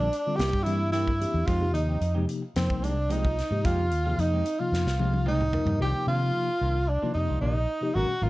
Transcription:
Already playing: tenor saxophone D4
0.00 clean electric guitar F3 A#3 D4 A4
0.12 muted clean electric guitar stroke, closed hi-hat
0.25 tine electric piano D3 G3 C4 F4 A4, muted clean electric guitar stroke
0.36 fingered electric bass C2, clean electric guitar G3 A#3 E4 G4, tenor saxophone G4, closed hi-hat
0.40 snare
0.53 fingered electric bass G2, muted clean electric guitar stroke, kick
0.63 tine electric piano E3 A#3 C4 D4 G4, clean electric guitar G3, tenor saxophone E4, closed hi-hat
0.67 clean electric guitar A#3 E4 G4
0.81 muted clean electric guitar stroke
0.92 clean electric guitar G3 A#3 E4 G4, tenor saxophone E4, closed hi-hat
1.07 kick
1.20 tine electric piano E3 A#3 C4 D4 G4, muted clean electric guitar stroke, closed hi-hat
1.34 fingered electric bass E2, muted clean electric guitar stroke
1.46 fingered electric bass F2, clean electric guitar G#3 C4 D#4 G4, tenor saxophone F4, kick, closed hi-hat
1.61 tine electric piano C3 F3 A#3 D#4 G4
1.74 fingered electric bass D#2, tenor saxophone D#4, muted clean electric guitar stroke, closed hi-hat
1.88 clean electric guitar C4 D#4 G4
2.01 fingered electric bass F2, closed hi-hat
2.15 tine electric piano C3 F3 A#3 D#4 G4, clean electric guitar G#3 C4 D#4 G4
2.27 muted clean electric guitar stroke, closed hi-hat
2.42 muted clean electric guitar stroke
2.56 fingered electric bass F2, tine electric piano C3 F3 A#3 D#4 A#4, tenor saxophone C4, snare, closed hi-hat
2.69 fingered electric bass C2, muted clean electric guitar stroke, kick
2.82 clean electric guitar G#3 C4 D#4 G4, tenor saxophone D4, closed hi-hat
2.96 muted clean electric guitar stroke
3.09 tine electric piano C3 F3 A#3 D#4 F4, clean electric guitar G#3 C4 D#4 G4, tenor saxophone D#4, closed hi-hat
3.25 kick
3.38 muted clean electric guitar stroke, snare, closed hi-hat
3.51 fingered electric bass G#2, tine electric piano C3 F3 A#3 D#4 G4, muted clean electric guitar stroke
3.64 fingered electric bass F2, clean electric guitar G#3 C4 D#4 G4, tenor saxophone F4, kick, closed hi-hat
3.92 fingered electric bass D#2, muted clean electric guitar stroke, closed hi-hat
4.05 tine electric piano C3 F3 A#3 D#4 G#4, clean electric guitar C4 D#4 G4
4.18 fingered electric bass F2, tenor saxophone D#4, closed hi-hat
4.34 clean electric guitar G#3 C4 D#4 G4
4.46 closed hi-hat
4.60 tine electric piano C3 F3 A#3 D#4 F4, tenor saxophone F4, muted clean electric guitar stroke
4.72 fingered electric bass F2, snare
4.86 fingered electric bass C2, muted clean electric guitar stroke, snare
4.99 tine electric piano C3 F3 A#3 D#4 G4, clean electric guitar G#3 C4 D#4 G4, high tom
5.13 muted clean electric guitar stroke, high tom
5.26 clean electric guitar G#3 C4 D#4 G4, tenor saxophone D#4, mid tom
5.31 tenor saxophone D#4
5.41 mid tom
5.53 tine electric piano C3 F3 A#3 D#4 A#4, muted clean electric guitar stroke, floor tom
5.66 fingered electric bass G2, muted clean electric guitar stroke, floor tom
5.79 fingered electric bass C2, tine electric piano C3 F3 A#3 D#4 G4, clean electric guitar D#3 A#3 D4 F4, tenor saxophone G4
5.84 tenor saxophone G4
5.95 muted clean electric guitar stroke
6.07 fingered electric bass C3, clean electric guitar D#3 A#3 D4 F4, tenor saxophone F4
6.22 muted clean electric guitar stroke
6.35 muted clean electric guitar stroke
6.49 muted clean electric guitar stroke
6.61 fingered electric bass C2, clean electric guitar D#3 A#3 D4 F4
6.88 tenor saxophone D4, muted clean electric guitar stroke
7.02 tine electric piano C3 F3 A#3 D#4 F4, clean electric guitar D#3 A#3 D4 F4, muted fingered electric bass stroke
7.14 fingered electric bass F2, tine electric piano C3 F3 A#3 D#4 G4, tenor saxophone D#4
7.28 fingered electric bass C2, clean electric guitar A#3 D4 F4
7.41 fingered electric bass A#1, clean electric guitar D#3 A#3 D4 F4, tenor saxophone D#4
7.56 muted clean electric guitar stroke
7.69 muted clean electric guitar stroke
7.81 tine electric piano C3 F3 A#3 D#4 G4
7.95 fingered electric bass G#1, tine electric piano A#2 D#3 G#3 C#4 F#4, clean electric guitar F#3 B3 D#4 A#4, tenor saxophone F#4
8.08 muted fingered electric bass stroke, muted clean electric guitar stroke
8.22 fingered electric bass G#1, tine electric piano A#2 D#3 G#3 C#4 F4, clean electric guitar F#3 B3 D#4 A#4, tenor saxophone F4

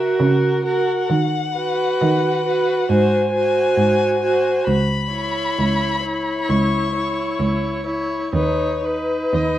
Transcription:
Already playing: viola F#4, violin A#4 E5
0.20 cello C#3
0.64 viola F#4, violin A#4 F#5
1.10 cello D#3
1.56 viola F#4, violin B4
2.01 cello D#3
2.46 viola F#4, violin B4
2.89 cello G#2, viola F#4, violin C5 G#5
3.34 viola F#4, violin C5
3.77 cello G#2
4.22 viola F#4, violin C5
4.68 cello C#2, violin B5
5.12 viola E4, violin C#5
5.59 cello C#2
6.05 viola E4, violin C#5
6.50 cello C#2, violin C#6
6.96 viola E4, violin C#5
7.39 cello C#2
7.86 viola E4, violin C#5
8.33 cello D#2, viola D#4, violin B4 C#5
8.83 viola D#4, violin B4
9.33 cello D#2, violin D#5

